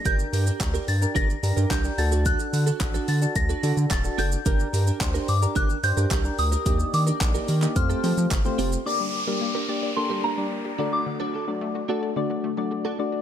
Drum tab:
HH |x-o-x-o-x-o-x-o-|x-o-x-o-x-o-x-o-|x-o-x-o-x-o-x-o-|x-o-x-o-x-o-x-o-|
SH |xxxxxxxxxxxxxxxx|xxxxxxxxxxxxxxxx|xxxxxxxxxxxxxxxx|xxxxxxxxxxxxxxxx|
CP |----x-------x---|----x-------x---|----x-------x---|----x--x----x---|
BD |o---o---o---o---|o---o---o---o---|o---o---o---o---|o---o---o---o---|

HH |----------------|----------------|
SH |----------------|----------------|
CP |----------------|----------------|
BD |----------------|----------------|